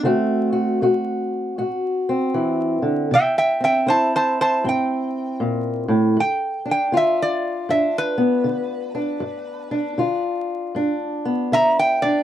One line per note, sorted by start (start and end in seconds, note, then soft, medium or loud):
0.03 0.75 D3 medium
0.03 0.81 A3 medium
0.03 2.07 C4 medium
0.03 0.51 F#4 medium
0.53 0.81 F#4 medium
0.82 1.53 A3 medium
0.82 1.57 F#4 medium
1.58 2.29 A2 medium
1.58 3.08 F#4 medium
2.09 3.09 C4 medium
2.34 2.82 E3 medium
2.82 3.11 D3 medium
3.11 3.82 C3 medium
3.11 3.37 E5 medium
3.11 3.37 G5 medium
3.38 3.61 E5 medium
3.38 3.62 G5 medium
3.60 4.64 C4 medium
3.60 3.87 E5 medium
3.65 3.88 G5 medium
3.86 4.58 E3 medium
3.86 6.17 E4 medium
3.86 4.12 C5 medium
3.86 4.14 A5 medium
4.16 4.38 C5 medium
4.16 4.40 A5 medium
4.41 4.64 C5 medium
4.41 4.65 A5 medium
4.64 5.35 G2 medium
4.64 6.14 C4 medium
4.69 5.41 G5 medium
5.40 5.88 A#2 medium
5.88 6.17 A2 medium
6.17 6.88 G2 medium
6.17 6.68 G5 medium
6.65 7.70 D4 medium
6.71 6.95 G5 medium
6.92 7.64 D3 medium
6.92 9.23 F4 medium
6.97 7.20 E5 medium
7.22 7.70 D5 medium
7.69 8.41 G2 medium
7.69 8.94 D4 medium
7.69 7.95 E5 medium
7.98 10.23 B4 loud
8.18 10.02 B3 medium
8.44 9.16 D3 medium
8.95 9.71 D4 medium
9.20 9.93 G2 medium
9.71 10.75 D4 medium
9.98 10.70 D3 medium
9.98 12.23 F4 medium
10.75 11.47 G2 medium
10.75 12.02 D4 medium
11.25 12.23 B3 medium
11.52 12.23 D3 medium
11.52 11.99 E5 medium
11.52 11.79 A#5 loud
11.79 12.23 G5 medium
12.02 12.23 D4 medium
12.02 12.23 D5 medium